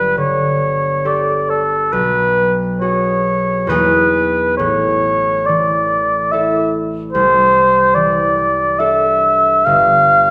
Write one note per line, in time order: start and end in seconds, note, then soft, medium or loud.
0.00 1.97 G1 soft
0.00 1.04 A4 soft
0.00 0.16 B4 medium
0.17 1.97 D3 soft
0.17 1.08 C#5 medium
1.05 1.96 G4 soft
1.05 1.96 A4 soft
1.05 1.51 D5 medium
1.50 1.94 A4 medium
1.93 3.73 B1 soft
1.93 2.54 B4 medium
2.80 3.73 F#4 soft
2.80 3.68 G#4 soft
2.80 3.71 C#5 medium
3.67 4.62 E2 soft
3.67 4.63 E3 soft
3.67 4.63 A#3 soft
3.67 4.63 D#4 soft
3.67 3.74 G#4 soft
3.67 4.57 B4 medium
4.57 7.18 A1 soft
4.57 5.47 C#5 medium
5.46 7.18 E3 soft
5.46 6.33 D5 medium
6.31 10.23 E4 soft
6.31 8.79 A4 soft
6.31 6.73 E5 medium
7.12 9.70 C2 soft
7.12 7.96 C5 medium
7.94 9.70 E3 soft
7.94 8.80 D5 medium
8.79 10.30 D4 soft
8.79 10.30 A4 soft
8.79 9.67 E5 medium
9.66 10.30 G1 soft
9.66 10.30 F5 medium